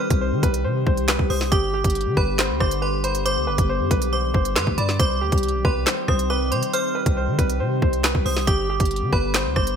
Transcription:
Already playing: D#3 G3 C4 G4 F6
0.00 B4
0.10 C2, kick, closed hi-hat
0.21 C5
0.32 D#3
0.43 C2 B4, kick, closed hi-hat
0.54 closed hi-hat
0.64 C3 C5
0.86 C2 C5, kick
0.97 closed hi-hat
1.08 B4, snare, clap, closed hi-hat
1.19 C2, kick
1.30 C2 C5 D#6, open hi-hat
1.41 snare
1.52 G1 D3 G3 B3 G4 D6, kick, closed hi-hat
1.74 G4
1.84 G1, kick, closed hi-hat
1.90 closed hi-hat
1.95 closed hi-hat
2.01 closed hi-hat
2.06 D3
2.17 G1 B4 B5, kick
2.39 C5, snare, clap, closed hi-hat
2.50 D2
2.60 G1 C5 D6, kick, cross-stick
2.71 closed hi-hat
2.82 B4 C6
3.04 C5 B5, closed hi-hat
3.15 closed hi-hat
3.26 C5 D6, closed hi-hat
3.37 D2
3.47 G1 B4
3.58 G1, kick, closed hi-hat
3.69 C5
3.80 G2
3.91 B1 B4, kick, closed hi-hat
4.02 closed hi-hat
4.13 C5 D6
4.34 G1 C5, kick
4.45 closed hi-hat
4.56 G2 B4 C6, snare, clap, closed hi-hat
4.67 D2, kick
4.78 G2 D5 B5, closed hi-hat
4.89 snare
4.99 C2 D#3 C4 G4 C5 D6, kick, closed hi-hat
5.21 D#2 G4
5.32 C2, kick, closed hi-hat
5.38 closed hi-hat
5.43 closed hi-hat
5.49 closed hi-hat
5.54 B1
5.65 C2 B4 C6, kick
5.86 C5, snare, clap, closed hi-hat
6.08 C2 C5 D#6, kick, cross-stick
6.19 closed hi-hat
6.30 B4 D6
6.51 C3 C5 C6, closed hi-hat
6.63 closed hi-hat
6.73 C5 F6, closed hi-hat
6.95 B4
7.06 C2, kick, closed hi-hat
7.17 C5
7.28 D#3
7.39 C2 B4, kick, closed hi-hat
7.50 closed hi-hat
7.60 C3 C5
7.82 C2 C5, kick
7.93 closed hi-hat
8.04 B4, snare, clap, closed hi-hat
8.15 C2, kick
8.25 C2 C5 D#6, open hi-hat
8.37 snare
8.47 G1 D3 B3 G4 D6, kick, closed hi-hat
8.69 G4
8.80 G1, kick, closed hi-hat
8.85 closed hi-hat
8.91 closed hi-hat
8.96 closed hi-hat
9.02 D3
9.13 G1 B4 B5, kick
9.34 C5, snare, clap, closed hi-hat
9.45 D2
9.56 G1 C5 D6, kick, cross-stick
9.67 closed hi-hat

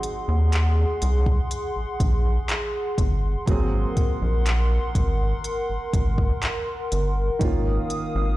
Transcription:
Already playing: F#3 C4 D#4 G#4 F#5 C6
0.03 closed hi-hat
0.28 D#2
0.53 clap, closed hi-hat
1.02 C2, closed hi-hat
1.26 kick
1.51 closed hi-hat
1.76 A#1
2.00 A#1, kick, closed hi-hat
2.49 clap, closed hi-hat
2.98 G1, kick, closed hi-hat
3.46 G#1 F#3 A#3 C4 A#4 F#5 C6, kick, closed hi-hat
3.51 G#4
3.97 kick, closed hi-hat
4.22 A#1
4.46 clap, closed hi-hat
4.95 G#1, kick, closed hi-hat
5.44 closed hi-hat
5.70 G#1
5.93 G#1, kick, closed hi-hat
6.18 kick
6.42 clap, closed hi-hat
6.92 G1, closed hi-hat
7.39 G#1 D#3 A#3 C#4 F5 D#6, kick, closed hi-hat
7.44 F4
7.90 closed hi-hat
8.15 G#1

